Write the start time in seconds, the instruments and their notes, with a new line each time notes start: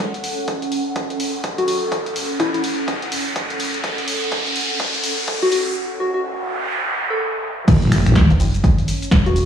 Already playing: ambient pad C#4 A4 F#5
0.00 kick, closed hi-hat, riser
0.14 closed hi-hat
0.24 open hi-hat
0.48 kick, closed hi-hat
0.62 closed hi-hat
0.72 open hi-hat
0.96 kick, closed hi-hat
1.10 closed hi-hat
1.20 open hi-hat
1.44 kick, closed hi-hat
1.58 soft synth lead F#4, closed hi-hat
1.68 soft synth lead F#4, open hi-hat
1.92 kick, closed hi-hat
2.06 closed hi-hat
2.16 open hi-hat
2.40 soft synth lead E4, kick, closed hi-hat
2.54 soft synth lead E4, closed hi-hat
2.64 open hi-hat
2.88 kick, closed hi-hat
3.02 closed hi-hat
3.12 open hi-hat
3.36 kick, closed hi-hat
3.50 closed hi-hat
3.60 open hi-hat
3.74 closed hi-hat
3.84 kick, closed hi-hat
3.98 closed hi-hat
4.08 open hi-hat
4.32 kick, closed hi-hat
4.46 closed hi-hat
4.56 open hi-hat
4.80 kick, closed hi-hat
4.94 closed hi-hat
5.04 open hi-hat
5.28 kick, closed hi-hat
5.42 soft synth lead F#4, closed hi-hat
5.52 soft synth lead F#4, open hi-hat
5.76 noise sweep
6.00 soft synth lead F#4
6.14 soft synth lead F#4
7.10 soft synth lead A4
7.68 wobble bass F#1, ambient pad C#4, kick, closed hi-hat, crash, sub drop, shaker
7.82 closed hi-hat
7.92 finger snap, open hi-hat, shaker
8.06 wobble bass A1, finger snap, closed hi-hat, shaker
8.15 kick, snare, closed hi-hat, shaker
8.30 fm bass E1, closed hi-hat
8.36 fm bass F#1, ambient pad A4, open hi-hat
8.40 shaker
8.54 closed hi-hat, shaker
8.64 fm bass F#1, kick, closed hi-hat, shaker
8.78 closed hi-hat
8.88 open hi-hat, shaker
9.02 closed hi-hat, shaker
9.11 fm bass E1, kick, snare, closed hi-hat
9.26 fm bass E1, soft synth lead F#4, closed hi-hat
9.36 soft synth lead F#4, open hi-hat, shaker